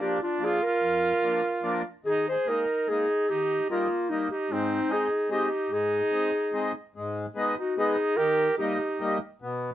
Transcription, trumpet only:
0, 0, Header, 1, 2, 480
1, 0, Start_track
1, 0, Key_signature, -4, "major"
1, 0, Tempo, 408441
1, 945, Time_signature, 3, 2, 24, 8
1, 11451, End_track
2, 0, Start_track
2, 0, Title_t, "Trumpet"
2, 0, Program_c, 0, 56
2, 28, Note_on_c, 0, 62, 64
2, 235, Note_off_c, 0, 62, 0
2, 276, Note_on_c, 0, 62, 70
2, 526, Note_on_c, 0, 65, 81
2, 543, Note_off_c, 0, 62, 0
2, 767, Note_off_c, 0, 65, 0
2, 767, Note_on_c, 0, 65, 94
2, 2189, Note_off_c, 0, 65, 0
2, 2448, Note_on_c, 0, 63, 92
2, 2657, Note_off_c, 0, 63, 0
2, 2710, Note_on_c, 0, 68, 68
2, 2940, Note_on_c, 0, 63, 70
2, 2958, Note_off_c, 0, 68, 0
2, 3415, Note_off_c, 0, 63, 0
2, 3415, Note_on_c, 0, 63, 72
2, 3865, Note_off_c, 0, 63, 0
2, 3865, Note_on_c, 0, 63, 87
2, 4330, Note_off_c, 0, 63, 0
2, 4357, Note_on_c, 0, 58, 69
2, 4823, Note_off_c, 0, 58, 0
2, 4823, Note_on_c, 0, 58, 61
2, 5052, Note_off_c, 0, 58, 0
2, 5076, Note_on_c, 0, 63, 78
2, 5315, Note_on_c, 0, 60, 99
2, 5333, Note_off_c, 0, 63, 0
2, 5789, Note_on_c, 0, 63, 72
2, 5806, Note_off_c, 0, 60, 0
2, 6245, Note_off_c, 0, 63, 0
2, 6260, Note_on_c, 0, 63, 69
2, 6731, Note_off_c, 0, 63, 0
2, 6731, Note_on_c, 0, 63, 88
2, 7934, Note_off_c, 0, 63, 0
2, 8905, Note_on_c, 0, 63, 57
2, 9123, Note_off_c, 0, 63, 0
2, 9123, Note_on_c, 0, 63, 82
2, 9602, Note_on_c, 0, 67, 112
2, 9620, Note_off_c, 0, 63, 0
2, 10080, Note_off_c, 0, 67, 0
2, 10087, Note_on_c, 0, 63, 71
2, 10758, Note_off_c, 0, 63, 0
2, 11451, End_track
0, 0, End_of_file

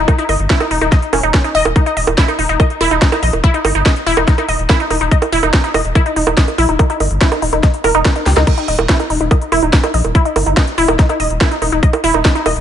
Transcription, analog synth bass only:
0, 0, Header, 1, 2, 480
1, 0, Start_track
1, 0, Tempo, 419580
1, 92, Time_signature, 4, 2, 24, 8
1, 14421, End_track
2, 0, Start_track
2, 0, Title_t, "Analog synth bass"
2, 0, Program_c, 0, 38
2, 331, Note_on_c, 0, 31, 94
2, 416, Note_off_c, 0, 31, 0
2, 451, Note_on_c, 0, 31, 86
2, 536, Note_off_c, 0, 31, 0
2, 811, Note_on_c, 0, 27, 97
2, 896, Note_off_c, 0, 27, 0
2, 931, Note_on_c, 0, 27, 80
2, 1017, Note_off_c, 0, 27, 0
2, 1291, Note_on_c, 0, 27, 94
2, 1377, Note_off_c, 0, 27, 0
2, 1411, Note_on_c, 0, 27, 86
2, 1497, Note_off_c, 0, 27, 0
2, 1771, Note_on_c, 0, 27, 92
2, 1856, Note_off_c, 0, 27, 0
2, 1891, Note_on_c, 0, 27, 78
2, 1976, Note_off_c, 0, 27, 0
2, 2251, Note_on_c, 0, 27, 101
2, 2337, Note_off_c, 0, 27, 0
2, 2371, Note_on_c, 0, 27, 84
2, 2457, Note_off_c, 0, 27, 0
2, 2731, Note_on_c, 0, 27, 100
2, 2816, Note_off_c, 0, 27, 0
2, 2851, Note_on_c, 0, 27, 82
2, 2937, Note_off_c, 0, 27, 0
2, 3211, Note_on_c, 0, 27, 93
2, 3297, Note_off_c, 0, 27, 0
2, 3331, Note_on_c, 0, 27, 79
2, 3417, Note_off_c, 0, 27, 0
2, 3691, Note_on_c, 0, 34, 91
2, 3777, Note_off_c, 0, 34, 0
2, 3811, Note_on_c, 0, 27, 83
2, 3896, Note_off_c, 0, 27, 0
2, 4171, Note_on_c, 0, 31, 96
2, 4256, Note_off_c, 0, 31, 0
2, 4291, Note_on_c, 0, 31, 82
2, 4377, Note_off_c, 0, 31, 0
2, 4651, Note_on_c, 0, 27, 98
2, 4737, Note_off_c, 0, 27, 0
2, 4771, Note_on_c, 0, 27, 84
2, 4857, Note_off_c, 0, 27, 0
2, 5131, Note_on_c, 0, 27, 92
2, 5217, Note_off_c, 0, 27, 0
2, 5251, Note_on_c, 0, 27, 88
2, 5336, Note_off_c, 0, 27, 0
2, 5611, Note_on_c, 0, 27, 90
2, 5697, Note_off_c, 0, 27, 0
2, 5731, Note_on_c, 0, 27, 86
2, 5816, Note_off_c, 0, 27, 0
2, 6091, Note_on_c, 0, 27, 102
2, 6176, Note_off_c, 0, 27, 0
2, 6210, Note_on_c, 0, 27, 82
2, 6296, Note_off_c, 0, 27, 0
2, 6570, Note_on_c, 0, 27, 96
2, 6656, Note_off_c, 0, 27, 0
2, 6690, Note_on_c, 0, 27, 80
2, 6776, Note_off_c, 0, 27, 0
2, 7051, Note_on_c, 0, 27, 90
2, 7136, Note_off_c, 0, 27, 0
2, 7170, Note_on_c, 0, 27, 83
2, 7256, Note_off_c, 0, 27, 0
2, 7531, Note_on_c, 0, 34, 95
2, 7616, Note_off_c, 0, 34, 0
2, 7651, Note_on_c, 0, 27, 84
2, 7736, Note_off_c, 0, 27, 0
2, 8011, Note_on_c, 0, 31, 92
2, 8096, Note_off_c, 0, 31, 0
2, 8131, Note_on_c, 0, 31, 81
2, 8216, Note_off_c, 0, 31, 0
2, 8491, Note_on_c, 0, 27, 94
2, 8576, Note_off_c, 0, 27, 0
2, 8611, Note_on_c, 0, 27, 80
2, 8696, Note_off_c, 0, 27, 0
2, 8971, Note_on_c, 0, 27, 92
2, 9056, Note_off_c, 0, 27, 0
2, 9091, Note_on_c, 0, 27, 87
2, 9176, Note_off_c, 0, 27, 0
2, 9451, Note_on_c, 0, 37, 91
2, 9537, Note_off_c, 0, 37, 0
2, 9571, Note_on_c, 0, 37, 83
2, 9657, Note_off_c, 0, 37, 0
2, 9931, Note_on_c, 0, 27, 93
2, 10017, Note_off_c, 0, 27, 0
2, 10051, Note_on_c, 0, 27, 78
2, 10137, Note_off_c, 0, 27, 0
2, 10411, Note_on_c, 0, 27, 97
2, 10497, Note_off_c, 0, 27, 0
2, 10531, Note_on_c, 0, 27, 80
2, 10616, Note_off_c, 0, 27, 0
2, 10891, Note_on_c, 0, 27, 91
2, 10977, Note_off_c, 0, 27, 0
2, 11011, Note_on_c, 0, 27, 83
2, 11096, Note_off_c, 0, 27, 0
2, 11371, Note_on_c, 0, 34, 97
2, 11456, Note_off_c, 0, 34, 0
2, 11490, Note_on_c, 0, 27, 83
2, 11576, Note_off_c, 0, 27, 0
2, 11850, Note_on_c, 0, 31, 99
2, 11936, Note_off_c, 0, 31, 0
2, 11971, Note_on_c, 0, 31, 81
2, 12056, Note_off_c, 0, 31, 0
2, 12331, Note_on_c, 0, 27, 100
2, 12416, Note_off_c, 0, 27, 0
2, 12451, Note_on_c, 0, 27, 83
2, 12536, Note_off_c, 0, 27, 0
2, 12811, Note_on_c, 0, 27, 93
2, 12896, Note_off_c, 0, 27, 0
2, 12931, Note_on_c, 0, 27, 85
2, 13016, Note_off_c, 0, 27, 0
2, 13291, Note_on_c, 0, 27, 94
2, 13376, Note_off_c, 0, 27, 0
2, 13411, Note_on_c, 0, 27, 84
2, 13496, Note_off_c, 0, 27, 0
2, 13771, Note_on_c, 0, 27, 101
2, 13856, Note_off_c, 0, 27, 0
2, 13891, Note_on_c, 0, 27, 84
2, 13977, Note_off_c, 0, 27, 0
2, 14251, Note_on_c, 0, 27, 95
2, 14337, Note_off_c, 0, 27, 0
2, 14371, Note_on_c, 0, 27, 83
2, 14421, Note_off_c, 0, 27, 0
2, 14421, End_track
0, 0, End_of_file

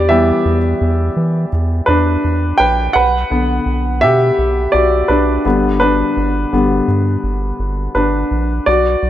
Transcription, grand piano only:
0, 0, Header, 1, 2, 480
1, 0, Start_track
1, 0, Tempo, 715137
1, 58, Time_signature, 4, 2, 24, 8
1, 6107, End_track
2, 0, Start_track
2, 0, Title_t, "Grand piano"
2, 0, Program_c, 0, 0
2, 0, Control_c, 0, 64, 127
2, 0, Note_on_c, 0, 67, 60
2, 0, Note_on_c, 0, 74, 83
2, 59, Note_on_c, 0, 76, 87
2, 60, Note_on_c, 0, 52, 51
2, 64, Note_on_c, 0, 55, 41
2, 68, Note_on_c, 0, 59, 53
2, 70, Note_off_c, 0, 67, 0
2, 70, Note_on_c, 0, 67, 63
2, 378, Note_off_c, 0, 52, 0
2, 380, Note_off_c, 0, 55, 0
2, 383, Note_off_c, 0, 59, 0
2, 991, Note_off_c, 0, 76, 0
2, 997, Note_off_c, 0, 67, 0
2, 1249, Note_on_c, 0, 71, 82
2, 1266, Note_on_c, 0, 62, 62
2, 1715, Note_off_c, 0, 62, 0
2, 1729, Note_on_c, 0, 79, 94
2, 1733, Note_off_c, 0, 71, 0
2, 1743, Note_on_c, 0, 71, 68
2, 1784, Note_off_c, 0, 79, 0
2, 1796, Note_off_c, 0, 71, 0
2, 1969, Note_on_c, 0, 78, 93
2, 1984, Note_on_c, 0, 71, 78
2, 1988, Control_c, 0, 64, 0
2, 1991, Note_off_c, 0, 74, 0
2, 2114, Control_c, 0, 64, 127
2, 2217, Note_on_c, 0, 50, 50
2, 2224, Note_on_c, 0, 59, 51
2, 2674, Note_off_c, 0, 71, 0
2, 2692, Note_on_c, 0, 76, 97
2, 2706, Note_on_c, 0, 67, 76
2, 2715, Note_off_c, 0, 78, 0
2, 3148, Note_off_c, 0, 76, 0
2, 3155, Note_off_c, 0, 67, 0
2, 3167, Note_on_c, 0, 74, 78
2, 3184, Note_on_c, 0, 66, 54
2, 3395, Note_off_c, 0, 74, 0
2, 3404, Note_off_c, 0, 66, 0
2, 3411, Note_on_c, 0, 71, 70
2, 3426, Note_on_c, 0, 62, 62
2, 3630, Note_off_c, 0, 50, 0
2, 3634, Note_off_c, 0, 59, 0
2, 3658, Note_on_c, 0, 50, 48
2, 3663, Note_on_c, 0, 55, 46
2, 3665, Note_on_c, 0, 59, 51
2, 3666, Control_c, 0, 64, 0
2, 3803, Control_c, 0, 64, 127
2, 3874, Note_off_c, 0, 62, 0
2, 3881, Note_off_c, 0, 71, 0
2, 3891, Note_on_c, 0, 71, 81
2, 3905, Note_on_c, 0, 62, 63
2, 4370, Note_off_c, 0, 50, 0
2, 4372, Note_off_c, 0, 55, 0
2, 4376, Note_off_c, 0, 59, 0
2, 4380, Note_on_c, 0, 50, 45
2, 4382, Note_on_c, 0, 55, 38
2, 4386, Note_on_c, 0, 59, 47
2, 4595, Note_off_c, 0, 50, 0
2, 4596, Note_off_c, 0, 55, 0
2, 4598, Note_off_c, 0, 59, 0
2, 5313, Note_off_c, 0, 62, 0
2, 5324, Note_off_c, 0, 71, 0
2, 5334, Note_on_c, 0, 71, 60
2, 5347, Note_on_c, 0, 62, 50
2, 5794, Note_off_c, 0, 62, 0
2, 5815, Note_on_c, 0, 74, 86
2, 5823, Control_c, 0, 64, 0
2, 5828, Note_on_c, 0, 66, 64
2, 5829, Note_off_c, 0, 71, 0
2, 5926, Control_c, 0, 64, 127
2, 6107, Note_off_c, 0, 66, 0
2, 6107, Note_off_c, 0, 74, 0
2, 6107, End_track
0, 0, End_of_file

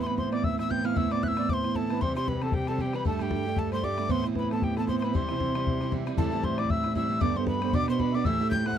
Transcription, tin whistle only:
0, 0, Header, 1, 2, 480
1, 0, Start_track
1, 0, Key_signature, 0, "major"
1, 0, Tempo, 260643
1, 1772, Time_signature, 4, 2, 24, 8
1, 16173, End_track
2, 0, Start_track
2, 0, Title_t, "Tin whistle"
2, 0, Program_c, 0, 75
2, 35, Note_on_c, 0, 84, 74
2, 120, Note_on_c, 0, 83, 104
2, 147, Note_off_c, 0, 84, 0
2, 316, Note_off_c, 0, 83, 0
2, 327, Note_on_c, 0, 84, 78
2, 579, Note_off_c, 0, 84, 0
2, 611, Note_on_c, 0, 86, 95
2, 811, Note_on_c, 0, 88, 99
2, 838, Note_off_c, 0, 86, 0
2, 1081, Note_off_c, 0, 88, 0
2, 1099, Note_on_c, 0, 88, 97
2, 1303, Note_on_c, 0, 91, 100
2, 1330, Note_off_c, 0, 88, 0
2, 1571, Note_on_c, 0, 89, 93
2, 1599, Note_off_c, 0, 91, 0
2, 1781, Note_on_c, 0, 88, 112
2, 1808, Note_off_c, 0, 89, 0
2, 2056, Note_on_c, 0, 86, 100
2, 2084, Note_off_c, 0, 88, 0
2, 2268, Note_on_c, 0, 90, 93
2, 2296, Note_off_c, 0, 86, 0
2, 2357, Note_on_c, 0, 88, 101
2, 2375, Note_off_c, 0, 90, 0
2, 2755, Note_on_c, 0, 86, 101
2, 2782, Note_off_c, 0, 88, 0
2, 2826, Note_on_c, 0, 84, 110
2, 2844, Note_off_c, 0, 86, 0
2, 3238, Note_on_c, 0, 81, 95
2, 3266, Note_off_c, 0, 84, 0
2, 3705, Note_on_c, 0, 84, 90
2, 3732, Note_off_c, 0, 81, 0
2, 3966, Note_off_c, 0, 84, 0
2, 3977, Note_on_c, 0, 84, 98
2, 4201, Note_on_c, 0, 83, 83
2, 4229, Note_off_c, 0, 84, 0
2, 4462, Note_on_c, 0, 81, 85
2, 4490, Note_off_c, 0, 83, 0
2, 4670, Note_on_c, 0, 79, 98
2, 4698, Note_off_c, 0, 81, 0
2, 4938, Note_on_c, 0, 81, 88
2, 4966, Note_off_c, 0, 79, 0
2, 5175, Note_on_c, 0, 79, 95
2, 5203, Note_off_c, 0, 81, 0
2, 5440, Note_on_c, 0, 83, 78
2, 5468, Note_off_c, 0, 79, 0
2, 5636, Note_off_c, 0, 83, 0
2, 5663, Note_on_c, 0, 81, 91
2, 5924, Note_on_c, 0, 79, 94
2, 5952, Note_off_c, 0, 81, 0
2, 6607, Note_on_c, 0, 81, 88
2, 6635, Note_off_c, 0, 79, 0
2, 6867, Note_off_c, 0, 81, 0
2, 6882, Note_on_c, 0, 84, 84
2, 7075, Note_on_c, 0, 86, 99
2, 7103, Note_off_c, 0, 84, 0
2, 7575, Note_on_c, 0, 84, 111
2, 7602, Note_off_c, 0, 86, 0
2, 7831, Note_off_c, 0, 84, 0
2, 8072, Note_on_c, 0, 83, 80
2, 8302, Note_off_c, 0, 83, 0
2, 8322, Note_on_c, 0, 81, 81
2, 8539, Note_on_c, 0, 79, 90
2, 8566, Note_off_c, 0, 81, 0
2, 8793, Note_off_c, 0, 79, 0
2, 8813, Note_on_c, 0, 81, 85
2, 8977, Note_off_c, 0, 81, 0
2, 8988, Note_on_c, 0, 84, 99
2, 9176, Note_off_c, 0, 84, 0
2, 9187, Note_on_c, 0, 84, 57
2, 9284, Note_on_c, 0, 83, 85
2, 9312, Note_off_c, 0, 84, 0
2, 9504, Note_on_c, 0, 84, 79
2, 9531, Note_off_c, 0, 83, 0
2, 10923, Note_off_c, 0, 84, 0
2, 11376, Note_on_c, 0, 81, 82
2, 11865, Note_on_c, 0, 84, 80
2, 11892, Note_off_c, 0, 81, 0
2, 12135, Note_on_c, 0, 86, 85
2, 12162, Note_off_c, 0, 84, 0
2, 12343, Note_on_c, 0, 88, 104
2, 12371, Note_off_c, 0, 86, 0
2, 12814, Note_off_c, 0, 88, 0
2, 12825, Note_on_c, 0, 88, 90
2, 13283, Note_on_c, 0, 86, 102
2, 13311, Note_off_c, 0, 88, 0
2, 13566, Note_on_c, 0, 84, 89
2, 13594, Note_off_c, 0, 86, 0
2, 13753, Note_off_c, 0, 84, 0
2, 13764, Note_on_c, 0, 83, 88
2, 14261, Note_on_c, 0, 86, 105
2, 14288, Note_off_c, 0, 83, 0
2, 14525, Note_off_c, 0, 86, 0
2, 14544, Note_on_c, 0, 84, 76
2, 14727, Note_on_c, 0, 83, 96
2, 14755, Note_off_c, 0, 84, 0
2, 15004, Note_on_c, 0, 86, 87
2, 15032, Note_off_c, 0, 83, 0
2, 15193, Note_on_c, 0, 88, 107
2, 15220, Note_off_c, 0, 86, 0
2, 15657, Note_off_c, 0, 88, 0
2, 15668, Note_on_c, 0, 91, 96
2, 15957, Note_on_c, 0, 90, 96
2, 15984, Note_off_c, 0, 91, 0
2, 16173, Note_off_c, 0, 90, 0
2, 16173, End_track
0, 0, End_of_file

